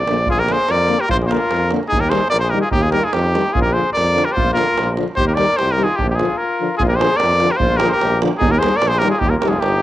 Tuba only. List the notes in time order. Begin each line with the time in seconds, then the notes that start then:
0.07 A#1
0.29 A#1
0.69 F2
1.11 A#1
1.52 F2
1.93 D#2
2.33 A#1
2.73 D#2
3.14 F2
3.57 A#1
3.97 F2
4.38 A#1
4.79 A#1
5.19 D#2
5.61 C2
6.02 A#1
6.82 A#1
7.24 F2
7.61 A#1
8.03 A#1
8.42 D#2
8.82 A#1
9.23 D#2
9.43 F1
9.63 G1